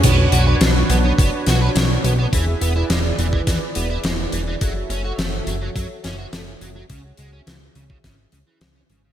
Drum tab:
CC |x---------------|----------------|----------------|----------------|
HH |x-x-x-x-x-x-x-x-|x-x-x-x-x-x-x-x-|x-x-x-x-x-x-x-x-|x-x-x-x-x-x-x-x-|
SD |----o-----o-o---|----o---o---o---|----o-----o-o---|----o---o---o---|
BD |o-------o-------|o------oo-------|o-------o-------|o------oo-------|